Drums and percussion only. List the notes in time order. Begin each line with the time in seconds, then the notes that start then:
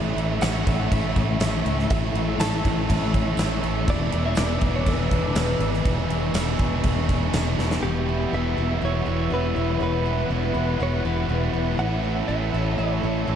0.18 crash
0.41 snare, tambourine, crash
0.67 kick, crash
0.92 kick, crash
1.16 kick, crash
1.40 snare, tambourine, crash
1.66 crash
1.79 snare
1.90 kick, crash
2.15 crash
2.40 snare, tambourine, crash
2.65 kick, crash
2.90 kick, crash
3.14 kick, crash
3.37 snare, tambourine, crash
3.63 crash
3.88 kick, crash
4.12 crash
4.35 snare, tambourine, crash
4.61 kick, crash
4.86 kick, crash
5.11 kick, crash
5.35 snare, tambourine, crash
5.60 crash
5.74 snare
5.85 kick, crash
6.10 crash
6.34 snare, tambourine, crash
6.59 kick, crash
6.84 kick, crash
7.09 kick, crash
7.33 snare, tambourine, crash
7.59 snare
7.71 snare